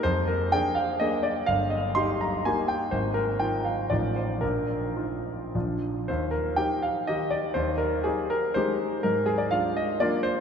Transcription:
\new Staff \with { instrumentName = "Grand piano" } { \time 3/4 \key ees \major \tempo 4 = 122 << { c''8 bes'8 g''8 f''8 ees''8 d''8 | f''8 ees''8 c'''8 bes''8 aes''8 g''8 | c''8 bes'8 g''8 f''8 d''8 c''8 | bes'2 r4 |
c''8 bes'8 g''8 f''8 ees''8 d''8 | c''8 bes'8 aes'8 bes'8 c''4 | bes'8 aes'16 d''16 f''8 ees''8 d''8 c''8 | } \\ { f,4 <d' aes'>4 <bes d' aes'>4 | g,,4 <ees' g'>4 <bes ees' g'>4 | aes,,4 <ees' f'>4 <a,, f ees' f'>4 | bes,,4 <ees' f'>4 <bes,, f d' f'>4 |
ees,4 <ees' g'>4 <ees ees' g'>4 | ees,4 <ees' g'>4 <aes ees' g'>4 | aes,4 <d' f'>4 <bes d' f'>4 | } >> }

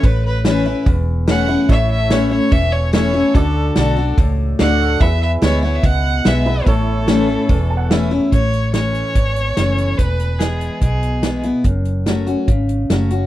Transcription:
<<
  \new Staff \with { instrumentName = "Fiddle" } { \time 4/4 \key a \major \tempo 4 = 145 b'8 b'8 b'4 r4 fis''4 | e''8 e''8 cis''8 cis''8 e''8 cis''8 cis''4 | a'4 a'4 r4 fis''4 | e''8 e''8 cis''8 cis''16 e''16 fis''4 e''4 |
a'2. r4 | cis''4 cis''2. | b'4 gis'4 gis'4. r8 | r1 | }
  \new Staff \with { instrumentName = "Honky-tonk piano" } { \time 4/4 \key a \major << { r1 | r1 | r1 | r1 |
r2 \tuplet 3/2 { r8. a''16 fis''8 } e''4 | r1 | r1 | r1 | } \\ { r1 | <e' a' cis''>2. <e' a' cis''>4 | <fis' a' d''>2. <fis' a' d''>4 | <e' gis' b'>2.~ <e' gis' b'>8 <e' gis' b'>8 |
<e' a' cis''>1 | r1 | r1 | r1 | } >> }
  \new Staff \with { instrumentName = "Steel-string acoustic guitar" } { \time 4/4 \key a \major << { r4 <e a cis' e'>8 <cis' e'>8 r4 <e a cis' e'>8 <cis' e'>8 | r4 <e a cis' e'>8 <cis' e'>8 r4 <e a cis' e'>8 <cis' e'>8 | r4 <d a d' fis'>8 <d' fis'>8 r4 <d a d' fis'>4 | r4 <e gis b e'>8 <b e'>8 r4 <e gis b e'>8 <b e'>8 |
r4 <e a cis' e'>8 <cis' e'>8 r4 <e a cis' e'>8 <cis' e'>8 | r4 <e a cis' e'>4 r4 <e a cis' e'>4 | r4 <e gis b e'>4 r4 <e gis b e'>8 <b e'>8 | r4 <fis a cis' fis'>8 <cis' fis'>8 r4 <fis a cis' fis'>8 <cis' fis'>8 | } \\ { a,2 e,2 | a,2 e,2 | d2 a,2 | e,2 b,2 |
a,2 e,2 | a,2 e,2 | e,2 b,2 | fis,2 cis2 | } >> }
  \new Staff \with { instrumentName = "Fingered electric bass" } { \clef bass \time 4/4 \key a \major a,,2 e,,2 | a,,2 e,,2 | d,4 b,,4 cis,4 d,4 | e,4 d,4 cis,4 b,,4 |
a,,2 e,,2 | a,,2 gis,,4 fis,,4 | e,,2 b,,2 | fis,,2 gis,,4 fis,,4 | }
  \new DrumStaff \with { instrumentName = "Drums" } \drummode { \time 4/4 <hho bd>4 <hho sn>4 <hho bd>4 <hho sn>4 | <hho bd>4 <hho sn>4 <hho bd>4 <hho sn>4 | <hho bd>4 <hho sn>4 <hho bd>4 <hho sn>4 | <hho bd>4 <hho sn>4 <hho bd>4 <hho sn>4 |
<hho bd>4 <hho sn>4 <hho bd>4 <hho sn>4 | <hh bd>8 hh8 <hh sn>8 hh8 <hh bd>8 hh8 <hh sn>8 hh8 | <hh bd>8 hh8 <hh sn>8 hh8 <hh bd>8 hh8 <hh sn>8 hh8 | <hh bd>8 hh8 <hh sn>8 hh8 <hh bd>8 hh8 <hh sn>8 hh8 | }
>>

